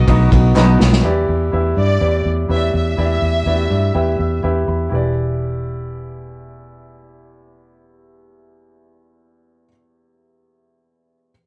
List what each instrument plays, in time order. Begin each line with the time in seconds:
Already playing: grand piano B2 B3 D#4 F#4 B4 D#5
0.07 fingered electric bass B1, steel-string acoustic guitar F#3 B3 D#4 F#4, grand piano B3 D#4 F#4 B4 D#5, kick, ride
0.31 fingered electric bass B1, steel-string acoustic guitar B3 D#4 F#4, kick, ride
0.55 fingered electric bass B1, steel-string acoustic guitar B2 F#3 B3 D#4 F#4, grand piano B3 D#4 F#4 B4 D#5, snare, clap
0.80 fingered electric bass B1, steel-string acoustic guitar B3 D#4 F#4, snare
0.93 snare
1.04 fingered electric bass E2, grand piano E3 E4 G4 B4 D5
1.29 fingered electric bass E2
1.52 fingered electric bass E2, grand piano E4 G4 B4 E5
1.77 fingered electric bass G2, violin section D5
2.00 fingered electric bass E2, grand piano E4 G4 B4 C#5
2.07 grand piano D5
2.25 fingered electric bass E2
2.48 fingered electric bass E2, grand piano E4 G4 B4 C#5, violin section E5
2.56 grand piano D5
2.74 fingered electric bass E2, violin section E5
2.97 fingered electric bass E2, grand piano E3 E4 G4 B4 D5
3.22 fingered electric bass E2
3.46 fingered electric bass E2, grand piano E4 F#4 B4 D5
3.52 grand piano G4
3.70 fingered electric bass G2, grand piano D5
3.94 fingered electric bass E2, grand piano E4 G4 B4 E5 G5
4.19 fingered electric bass E2, grand piano E5
4.43 fingered electric bass E2, grand piano E4 G4 B4 E5 G5
4.68 fingered electric bass E2, grand piano B5
4.89 fingered electric bass E1, grand piano E2 E4 G4 B4
4.95 grand piano D5